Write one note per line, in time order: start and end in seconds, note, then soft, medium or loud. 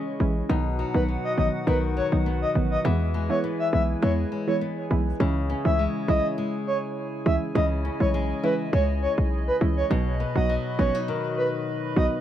0.00 0.49 C#3 medium
0.00 0.56 G#3 medium
0.00 0.45 C#4 medium
0.00 0.56 C#4 medium
0.00 0.45 E4 medium
0.00 0.50 E4 medium
0.00 0.45 G#4 medium
0.00 0.47 D#5 medium
0.20 0.42 A1 medium
0.20 0.36 E3 medium
0.20 0.36 G#3 medium
0.20 0.36 C#4 medium
0.20 0.36 E4 medium
0.49 0.83 B1 loud
0.49 2.85 B2 medium
0.49 0.65 D#3 medium
0.49 0.65 F#3 medium
0.49 0.65 B3 medium
0.49 2.82 D#4 medium
0.49 0.65 D#4 loud
0.49 2.85 D#4 medium
0.49 2.82 F#4 medium
0.49 5.16 B4 medium
0.49 2.82 F#5 medium
0.79 1.96 F#3 medium
0.94 1.17 B1 medium
0.94 1.08 D#3 medium
0.94 1.08 F#3 medium
0.94 1.08 B3 medium
0.94 1.08 D#4 medium
0.94 1.03 B4 medium
1.08 2.26 B3 medium
1.24 1.33 D#5 medium
1.37 1.49 A1 medium
1.37 1.53 D#3 medium
1.37 1.53 F#3 medium
1.37 1.53 B3 medium
1.37 1.53 D#4 medium
1.37 1.48 D#5 medium
1.67 2.01 B1 loud
1.67 1.82 D#3 medium
1.67 2.84 D#3 medium
1.67 1.83 F#3 medium
1.67 1.83 B3 medium
1.67 1.83 D#4 loud
1.67 1.77 B4 medium
1.97 2.91 F#3 medium
1.97 2.07 C#5 medium
2.12 2.45 B1 medium
2.12 2.26 D#3 medium
2.12 2.26 F#3 medium
2.12 2.26 B3 medium
2.12 2.26 D#4 medium
2.26 3.43 B3 medium
2.42 2.50 D#5 medium
2.55 2.78 A1 medium
2.55 2.71 D#3 medium
2.55 2.71 F#3 medium
2.55 2.71 B3 medium
2.55 2.71 D#4 medium
2.71 2.80 D#5 medium
2.84 3.29 E2 loud
2.84 3.00 E3 loud
2.84 5.20 E3 medium
2.84 3.00 G#3 medium
2.84 3.00 B3 medium
2.84 5.18 E4 medium
2.84 3.00 E4 loud
2.84 6.08 E4 medium
2.84 5.18 G#4 medium
2.84 5.18 G#5 medium
3.14 4.02 G#3 medium
3.29 3.43 E3 medium
3.29 3.43 G#3 medium
3.29 3.44 B3 medium
3.29 3.44 E4 medium
3.29 3.39 C#5 medium
3.44 4.60 B3 medium
3.59 3.68 E5 medium
3.73 3.95 B1 loud
3.73 3.88 E3 medium
3.73 3.88 G#3 medium
3.73 3.89 B3 medium
3.73 3.89 E4 medium
3.73 3.83 E5 medium
4.02 4.25 E2 loud
4.02 4.18 E3 medium
4.02 4.18 G#3 medium
4.02 4.31 G#3 medium
4.02 4.18 B3 medium
4.02 4.18 E4 loud
4.02 4.12 C#5 medium
4.32 5.79 G#3 medium
4.47 4.61 E3 medium
4.47 4.61 G#3 medium
4.47 4.61 B3 medium
4.47 4.61 E4 medium
4.47 4.56 C#5 medium
4.61 5.26 B3 medium
4.90 5.13 B1 medium
4.90 5.06 E3 medium
4.90 5.06 G#3 medium
4.90 5.06 B3 medium
4.90 5.06 E4 medium
5.20 5.54 C#2 loud
5.20 7.54 C#3 medium
5.20 5.35 E3 loud
5.20 5.36 G#3 medium
5.20 5.36 C#4 medium
5.20 9.87 E4 medium
5.20 5.36 E4 loud
5.20 9.87 G#4 medium
5.20 7.53 C#5 medium
5.20 9.87 G#5 medium
5.50 7.84 C#4 medium
5.65 5.87 C#2 loud
5.65 6.05 E3 medium
5.65 6.05 G#3 medium
5.65 6.05 C#4 medium
5.65 6.05 E4 medium
5.65 5.84 E5 medium
5.79 6.37 G#3 medium
6.08 6.20 B1 medium
6.08 6.35 E3 medium
6.08 6.35 G#3 medium
6.08 6.36 C#4 medium
6.08 8.42 E4 medium
6.08 6.36 E4 medium
6.08 6.27 D#5 medium
6.38 8.13 G#3 medium
6.67 6.77 C#5 medium
7.26 7.38 C#2 medium
7.26 7.41 E3 medium
7.26 7.41 G#3 medium
7.26 7.42 C#4 medium
7.26 7.42 E4 medium
7.26 7.36 E5 medium
7.55 7.89 C#2 loud
7.55 9.91 C#3 medium
7.55 7.71 E3 medium
7.55 7.71 G#3 medium
7.55 7.71 C#4 medium
7.55 7.71 E4 loud
7.55 12.21 D#5 medium
7.55 7.65 D#5 medium
7.85 9.97 C#4 medium
8.00 8.33 B1 medium
8.00 8.40 E3 medium
8.00 8.40 G#3 medium
8.00 8.40 C#4 medium
8.00 8.40 E4 medium
8.00 8.09 C#5 medium
8.14 8.72 G#3 medium
8.43 8.71 E3 medium
8.43 8.71 G#3 medium
8.43 8.71 C#4 medium
8.43 9.97 E4 medium
8.43 8.71 E4 medium
8.43 8.54 B4 medium
8.73 9.07 C#2 loud
8.73 9.97 G#3 medium
8.73 8.83 C#5 medium
9.02 9.12 C#5 medium
9.18 9.51 B1 loud
9.47 9.56 B4 medium
9.61 9.83 C#2 medium
9.61 9.77 E3 medium
9.61 9.77 G#3 medium
9.61 9.77 C#4 medium
9.61 9.77 E4 medium
9.77 9.86 C#5 medium
9.90 10.25 B1 loud
9.90 12.21 B2 medium
9.90 10.06 F#3 medium
9.90 10.06 B3 medium
9.90 10.06 D#4 medium
9.90 12.21 F#4 medium
9.90 10.06 F#4 loud
9.90 12.21 B4 medium
9.90 12.21 B5 medium
10.20 12.21 B3 medium
10.35 10.58 B1 medium
10.35 10.75 F#3 medium
10.35 10.75 B3 medium
10.35 10.76 D#4 medium
10.35 10.76 F#4 medium
10.35 10.54 D#5 medium
10.49 12.21 F#3 medium
10.78 10.91 A1 medium
10.78 11.06 F#3 medium
10.78 11.06 B3 medium
10.78 10.95 C#4 medium
10.78 11.06 D#4 medium
10.78 11.06 F#4 medium
10.78 10.98 C#5 medium
10.95 12.21 D#4 medium
11.08 12.21 D#3 medium
11.37 11.47 B4 medium
11.96 12.08 B1 medium
11.96 12.12 F#3 medium
11.96 12.12 B3 medium
11.96 12.12 D#4 medium
11.96 12.12 F#4 medium
11.96 12.06 D#5 medium